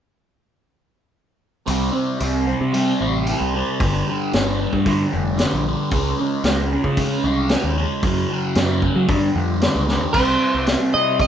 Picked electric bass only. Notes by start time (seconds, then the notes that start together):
1.68 C2
2.21 C2
2.61 C3
3.01 A1
3.41 C2
3.80 G1
4.34 G1
4.73 G2
5.14 F1
5.54 A#1
5.92 C#2
6.44 C#2
6.84 C#3
7.24 C2
7.64 D#2
8.03 F#2
8.56 F#2
8.96 F#3
9.09 G2
9.35 F2
9.75 C#2
10.14 C2
10.55 C2
10.94 C3